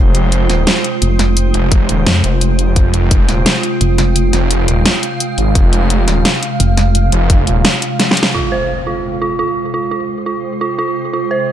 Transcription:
0.00 0.48 F1 loud
0.00 8.30 C3 medium
0.00 8.30 G#3 medium
0.00 8.30 F4 medium
0.00 2.74 C5 medium
0.15 closed hi-hat medium
0.32 closed hi-hat medium
0.50 0.66 D#1 loud
0.50 snare soft
0.50 closed hi-hat medium
0.67 snare loud
0.67 closed hi-hat medium
0.84 closed hi-hat medium
1.02 1.53 F1 loud
1.02 closed hi-hat medium
1.19 snare soft
1.19 closed hi-hat medium
1.37 closed hi-hat medium
1.54 1.88 F1 loud
1.54 closed hi-hat medium
1.72 kick loud
1.72 closed hi-hat medium
1.89 2.05 D#1 medium
1.89 closed hi-hat medium
2.07 2.23 F2 loud
2.07 snare loud
2.07 closed hi-hat medium
2.24 2.75 F1 loud
2.24 closed hi-hat medium
2.41 closed hi-hat medium
2.59 closed hi-hat medium
2.76 3.27 F1 loud
2.76 8.32 F5 medium
2.76 kick loud
2.76 closed hi-hat medium
2.94 closed hi-hat medium
3.11 kick loud
3.11 closed hi-hat medium
3.29 3.45 D#1 loud
3.29 snare soft
3.29 closed hi-hat medium
3.46 snare loud
3.46 closed hi-hat medium
3.63 closed hi-hat medium
3.81 4.32 F1 loud
3.81 closed hi-hat medium
3.98 snare soft
3.98 closed hi-hat medium
4.16 closed hi-hat medium
4.33 4.67 F1 medium
4.33 snare soft
4.33 closed hi-hat medium
4.51 closed hi-hat medium
4.68 4.84 D#1 medium
4.68 closed hi-hat medium
4.86 snare loud
4.86 closed hi-hat medium
5.03 closed hi-hat medium
5.20 closed hi-hat medium
5.38 5.54 G#1 loud
5.38 closed hi-hat medium
5.55 6.06 F1 loud
5.55 kick loud
5.55 closed hi-hat medium
5.73 closed hi-hat medium
5.90 closed hi-hat loud
6.08 6.24 D#1 loud
6.08 snare soft
6.08 closed hi-hat medium
6.25 snare loud
6.25 closed hi-hat medium
6.43 closed hi-hat medium
6.60 7.11 F1 loud
6.60 closed hi-hat medium
6.77 snare soft
6.77 closed hi-hat medium
6.95 closed hi-hat loud
7.12 7.46 F1 loud
7.12 closed hi-hat medium
7.30 kick loud
7.30 closed hi-hat loud
7.47 7.63 D#1 loud
7.47 closed hi-hat medium
7.65 snare loud
7.65 closed hi-hat loud
7.82 closed hi-hat medium
8.00 snare medium
8.00 closed hi-hat loud
8.11 snare medium
8.17 closed hi-hat medium
8.23 snare medium
8.34 11.52 C3 medium
8.34 11.52 G#3 medium
8.34 8.49 F4 medium
8.34 11.52 F4 medium
8.34 11.52 C5 medium
8.34 impact medium
8.52 8.66 C5 medium
8.87 9.01 F4 medium
9.22 9.31 F4 medium
9.39 9.48 F4 medium
9.74 9.88 F4 medium
9.91 10.01 F4 medium
10.26 10.40 F4 medium
10.61 10.71 F4 medium
10.79 10.88 F4 loud
11.13 11.28 F4 medium
11.31 11.45 C5 medium

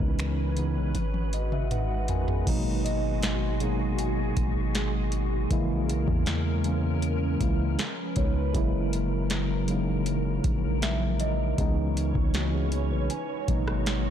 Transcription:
0.00 0.78 C#2 loud
0.00 0.14 C#3 medium
0.00 0.14 E3 medium
0.00 0.94 E3 medium
0.00 0.15 G#3 loud
0.00 0.15 B3 medium
0.00 0.94 C#4 medium
0.00 0.97 C#4 medium
0.00 0.16 D#4 loud
0.00 0.97 A#4 medium
0.00 2.44 B4 medium
0.00 kick medium
0.19 finger snap loud
0.19 closed hi-hat medium
0.56 0.95 C#3 medium
0.56 0.95 E3 medium
0.56 0.95 G#3 medium
0.56 0.96 B3 medium
0.56 0.96 D#4 medium
0.56 closed hi-hat medium
0.76 0.94 B1 loud
0.95 2.43 G#1 loud
0.95 2.45 G#3 medium
0.95 2.45 F#4 medium
0.95 closed hi-hat medium
0.95 high tom medium
1.14 high tom medium
1.33 1.51 D#5 medium
1.33 closed hi-hat medium
1.52 1.70 E5 medium
1.52 mid tom medium
1.71 2.08 D#4 medium
1.71 2.07 B4 medium
1.71 1.89 F#5 medium
1.71 closed hi-hat medium
1.71 mid tom medium
1.91 2.08 F#5 medium
2.08 2.28 C#4 medium
2.08 2.27 A#4 medium
2.08 2.45 G#5 medium
2.08 closed hi-hat medium
2.08 floor tom medium
2.28 2.65 B3 medium
2.28 2.64 G#4 medium
2.28 floor tom medium
2.46 4.33 G#1 loud
2.46 3.18 B2 loud
2.46 3.18 F#3 loud
2.46 7.75 G#3 medium
2.46 3.19 G#3 loud
2.46 3.19 A#3 loud
2.46 3.20 D#4 loud
2.46 5.48 F#4 medium
2.46 5.48 G#4 medium
2.46 kick loud
2.46 closed hi-hat medium
2.46 crash loud
2.85 3.58 D#5 medium
2.85 closed hi-hat medium
3.23 snare loud
3.23 closed hi-hat medium
3.60 4.56 B2 medium
3.60 4.56 F#3 medium
3.60 4.57 G#3 medium
3.60 4.57 A#3 medium
3.60 4.57 D#4 medium
3.60 closed hi-hat medium
3.99 4.72 G#5 medium
3.99 closed hi-hat medium
4.37 5.47 G#1 loud
4.37 kick loud
4.37 closed hi-hat medium
4.75 snare loud
4.75 closed hi-hat medium
5.12 closed hi-hat medium
5.50 5.90 A#1 loud
5.50 6.22 C#3 loud
5.50 6.22 E3 loud
5.50 6.23 G#3 loud
5.50 6.23 A#3 loud
5.50 8.52 C#4 medium
5.50 6.23 E4 loud
5.50 7.76 A#4 medium
5.50 kick loud
5.50 closed hi-hat medium
5.89 6.07 B1 loud
5.89 closed hi-hat medium
6.08 7.37 E2 loud
6.08 kick loud
6.26 snare loud
6.26 closed hi-hat medium
6.64 7.12 C#3 medium
6.64 7.12 E3 medium
6.64 7.13 G#3 medium
6.64 7.13 A#3 medium
6.64 7.14 C#4 loud
6.64 closed hi-hat medium
7.02 closed hi-hat medium
7.40 7.77 C#2 loud
7.40 7.78 C#3 medium
7.40 7.79 E3 medium
7.40 7.79 G#3 medium
7.40 7.79 A#3 medium
7.40 7.80 E4 medium
7.40 kick loud
7.40 closed hi-hat medium
7.78 8.54 F3 medium
7.78 8.54 B4 medium
7.78 snare loud
7.78 closed hi-hat medium
8.16 8.53 C#2 loud
8.16 8.40 C#3 medium
8.16 8.41 F3 medium
8.16 8.41 G#3 medium
8.16 8.41 B3 medium
8.16 8.42 D#4 medium
8.16 8.89 C#5 medium
8.16 kick medium
8.16 closed hi-hat medium
8.54 10.40 F#1 loud
8.54 9.26 C#3 loud
8.54 11.55 E3 medium
8.54 11.55 F#3 medium
8.54 9.26 F#3 loud
8.54 9.26 G#3 loud
8.54 9.27 A#3 loud
8.54 9.27 E4 loud
8.54 11.55 A#4 medium
8.54 kick loud
8.54 closed hi-hat medium
8.93 closed hi-hat medium
9.30 snare loud
9.30 closed hi-hat medium
9.68 10.63 C#3 medium
9.68 10.64 F#3 medium
9.68 10.64 G#3 medium
9.68 10.64 A#3 medium
9.68 10.65 D#4 medium
9.68 closed hi-hat medium
10.06 closed hi-hat medium
10.44 11.54 A#1 loud
10.44 kick loud
10.44 closed hi-hat medium
10.82 11.55 E5 medium
10.82 snare loud
10.82 closed hi-hat medium
11.20 11.92 D#5 medium
11.20 closed hi-hat medium
11.58 12.13 C#2 loud
11.58 12.29 C#3 loud
11.58 12.30 E3 loud
11.58 13.09 E3 medium
11.58 12.30 G#3 loud
11.58 12.30 B3 loud
11.58 13.09 C#4 medium
11.58 12.31 D#4 loud
11.58 14.10 C#5 medium
11.58 kick loud
11.58 closed hi-hat medium
11.97 closed hi-hat medium
12.15 12.93 C#2 loud
12.15 kick loud
12.34 12.53 A#3 medium
12.34 12.53 F#4 medium
12.34 snare loud
12.34 closed hi-hat medium
12.54 12.90 B3 medium
12.54 12.90 G#4 medium
12.72 closed hi-hat medium
12.91 13.09 B1 loud
12.91 13.28 D#4 medium
12.91 13.28 B4 medium
13.10 14.10 G#3 medium
13.10 14.10 F#4 medium
13.10 13.83 G#5 medium
13.10 closed hi-hat medium
13.48 14.10 G#1 loud
13.48 13.96 B2 medium
13.48 13.96 F#3 medium
13.48 13.96 G#3 medium
13.48 13.97 A#3 medium
13.48 13.97 D#4 medium
13.48 kick loud
13.48 closed hi-hat medium
13.68 cross-stick loud
13.86 snare loud
13.86 closed hi-hat medium

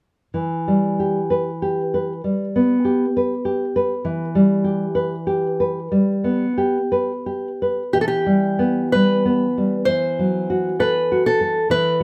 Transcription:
0.34 2.21 E3 soft
0.68 1.18 G3 soft
0.99 1.49 G4 soft
1.30 1.80 B4 soft
1.62 2.12 G4 soft
1.94 2.44 B4 soft
2.24 2.74 G3 soft
2.56 3.05 B3 soft
2.85 3.33 G4 soft
3.17 3.64 B4 soft
3.45 3.93 G4 soft
3.76 4.24 B4 soft
4.05 5.88 E3 soft
4.35 4.84 G3 soft
4.64 5.14 G4 soft
4.95 5.46 B4 soft
5.27 5.79 G4 soft
5.60 6.12 B4 soft
5.92 6.44 G3 soft
6.24 6.77 B3 soft
6.58 7.11 G4 soft
6.92 7.47 B4 soft
7.26 7.82 G4 soft
7.62 7.95 B4 soft
7.93 9.83 E3 soft
7.93 8.01 G4 soft
8.01 8.07 A4 soft
8.08 8.88 G4 soft
8.26 8.79 G3 soft
8.59 9.11 B3 soft
8.92 9.45 G3 soft
8.92 9.84 B4 soft
9.25 9.76 B3 soft
9.58 9.88 G3 soft
9.85 11.67 E3 soft
9.85 10.75 C5 soft
10.19 10.68 F#3 soft
10.50 10.99 F#4 soft
10.80 11.28 A4 soft
10.80 11.22 B4 soft
11.12 11.60 F#4 soft
11.26 11.68 A4 soft
11.41 11.71 A4 soft
11.70 12.03 E3 soft
11.70 12.03 B4 medium

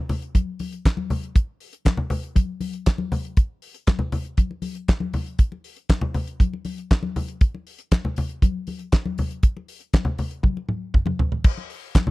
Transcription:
0.09 open hi-hat medium
0.09 low conga medium
0.22 closed hi-hat soft
0.35 kick medium
0.35 closed hi-hat medium
0.35 high conga medium
0.59 open hi-hat medium
0.59 high conga medium
0.72 closed hi-hat soft
0.85 kick loud
0.85 snare medium
0.85 clap medium
0.85 closed hi-hat medium
0.85 muted conga soft
0.97 muted conga soft
0.97 high conga medium
1.10 open hi-hat medium
1.10 low conga medium
1.23 closed hi-hat soft
1.35 kick loud
1.35 closed hi-hat medium
1.35 muted conga soft
1.60 open hi-hat medium
1.73 closed hi-hat soft
1.85 kick loud
1.85 snare loud
1.85 clap medium
1.85 closed hi-hat medium
1.85 muted conga soft
1.85 high conga medium
1.97 muted conga soft
1.97 low conga medium
2.10 open hi-hat medium
2.10 low conga medium
2.23 closed hi-hat soft
2.36 kick loud
2.36 closed hi-hat medium
2.36 high conga medium
2.60 open hi-hat medium
2.60 high conga medium
2.73 closed hi-hat soft
2.86 kick loud
2.86 snare loud
2.86 clap medium
2.86 closed hi-hat medium
2.86 muted conga soft
2.98 muted conga soft
2.98 high conga medium
3.12 open hi-hat medium
3.12 low conga medium
3.25 closed hi-hat soft
3.37 kick loud
3.37 closed hi-hat medium
3.37 muted conga soft
3.62 open hi-hat medium
3.74 closed hi-hat soft
3.87 kick loud
3.87 snare loud
3.87 clap medium
3.87 closed hi-hat medium
3.87 muted conga soft
3.87 high conga medium
3.99 muted conga soft
3.99 low conga medium
4.12 open hi-hat medium
4.12 low conga medium
4.25 closed hi-hat soft
4.37 kick medium
4.37 closed hi-hat medium
4.37 high conga medium
4.51 muted conga soft
4.62 open hi-hat medium
4.62 high conga medium
4.75 closed hi-hat soft
4.88 kick medium
4.88 snare medium
4.88 clap medium
4.88 closed hi-hat medium
5.00 muted conga soft
5.00 high conga medium
5.13 open hi-hat medium
5.13 low conga medium
5.26 closed hi-hat soft
5.39 kick loud
5.39 closed hi-hat medium
5.39 muted conga soft
5.52 muted conga soft
5.64 open hi-hat medium
5.76 closed hi-hat soft
5.89 kick loud
5.89 snare loud
5.89 clap medium
5.89 closed hi-hat medium
5.89 high conga medium
6.01 low conga medium
6.14 open hi-hat medium
6.14 low conga medium
6.27 closed hi-hat soft
6.40 kick loud
6.40 closed hi-hat medium
6.40 high conga medium
6.53 muted conga soft
6.65 open hi-hat medium
6.65 high conga medium
6.78 closed hi-hat soft
6.91 kick loud
6.91 snare loud
6.91 clap medium
6.91 closed hi-hat medium
7.03 muted conga soft
7.03 high conga medium
7.16 open hi-hat medium
7.16 low conga medium
7.28 closed hi-hat soft
7.41 kick loud
7.41 closed hi-hat medium
7.41 muted conga soft
7.55 muted conga soft
7.67 open hi-hat medium
7.79 closed hi-hat soft
7.91 kick loud
7.91 snare loud
7.91 clap medium
7.91 closed hi-hat medium
7.91 high conga medium
8.05 low conga medium
8.16 open hi-hat medium
8.16 low conga medium
8.29 closed hi-hat soft
8.42 kick loud
8.42 closed hi-hat medium
8.42 muted conga soft
8.42 high conga medium
8.67 open hi-hat medium
8.67 high conga medium
8.79 closed hi-hat soft
8.92 kick loud
8.92 snare medium
8.92 clap medium
8.92 closed hi-hat medium
9.06 muted conga soft
9.06 high conga medium
9.18 open hi-hat medium
9.18 low conga medium
9.31 closed hi-hat soft
9.43 kick loud
9.43 closed hi-hat medium
9.57 muted conga soft
9.68 open hi-hat medium
9.80 closed hi-hat soft
9.93 kick loud
9.93 snare loud
9.93 clap medium
9.93 closed hi-hat medium
9.93 muted conga soft
9.93 high conga medium
10.05 muted conga soft
10.05 low conga medium
10.18 open hi-hat medium
10.18 low conga medium
10.31 closed hi-hat soft
10.43 kick loud
10.43 high tom medium
10.43 high conga medium
10.57 muted conga soft
10.69 mid tom medium
10.69 high conga medium
10.94 kick loud
10.94 mid tom medium
11.06 mid tom medium
11.06 muted conga soft
11.06 high conga medium
11.19 floor tom medium
11.19 low conga medium
11.32 floor tom medium
11.44 kick loud
11.44 crash loud
11.44 muted conga soft
11.58 muted conga soft
11.70 open hi-hat medium
11.95 kick loud
11.95 snare loud
11.95 clap loud
11.95 closed hi-hat medium
11.95 muted conga soft
11.95 high conga medium
12.07 muted conga soft
12.07 low conga medium

